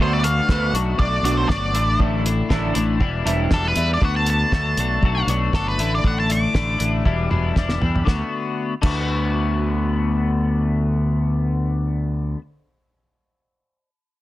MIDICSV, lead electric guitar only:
0, 0, Header, 1, 2, 480
1, 0, Start_track
1, 0, Key_signature, 2, "major"
1, 0, Tempo, 506329
1, 1893, Time_signature, 4, 2, 24, 8
1, 13471, End_track
2, 0, Start_track
2, 0, Title_t, "Lead electric guitar"
2, 0, Program_c, 0, 29
2, 20, Note_on_c, 0, 72, 95
2, 126, Note_off_c, 0, 72, 0
2, 126, Note_on_c, 0, 74, 72
2, 224, Note_on_c, 0, 77, 91
2, 230, Note_off_c, 0, 74, 0
2, 685, Note_off_c, 0, 77, 0
2, 935, Note_on_c, 0, 74, 67
2, 1168, Note_off_c, 0, 74, 0
2, 1185, Note_on_c, 0, 74, 75
2, 1301, Note_off_c, 0, 74, 0
2, 1301, Note_on_c, 0, 72, 67
2, 1406, Note_off_c, 0, 72, 0
2, 1410, Note_on_c, 0, 74, 84
2, 1876, Note_off_c, 0, 74, 0
2, 3353, Note_on_c, 0, 69, 85
2, 3484, Note_off_c, 0, 69, 0
2, 3484, Note_on_c, 0, 71, 77
2, 3700, Note_off_c, 0, 71, 0
2, 3731, Note_on_c, 0, 74, 81
2, 3827, Note_off_c, 0, 74, 0
2, 3835, Note_on_c, 0, 78, 83
2, 3939, Note_off_c, 0, 78, 0
2, 3947, Note_on_c, 0, 81, 77
2, 4054, Note_off_c, 0, 81, 0
2, 4077, Note_on_c, 0, 81, 78
2, 4993, Note_off_c, 0, 81, 0
2, 5259, Note_on_c, 0, 69, 85
2, 5370, Note_off_c, 0, 69, 0
2, 5388, Note_on_c, 0, 71, 78
2, 5611, Note_off_c, 0, 71, 0
2, 5639, Note_on_c, 0, 74, 73
2, 5740, Note_off_c, 0, 74, 0
2, 5758, Note_on_c, 0, 78, 78
2, 5859, Note_off_c, 0, 78, 0
2, 5875, Note_on_c, 0, 81, 72
2, 5978, Note_off_c, 0, 81, 0
2, 5987, Note_on_c, 0, 86, 82
2, 6909, Note_off_c, 0, 86, 0
2, 13471, End_track
0, 0, End_of_file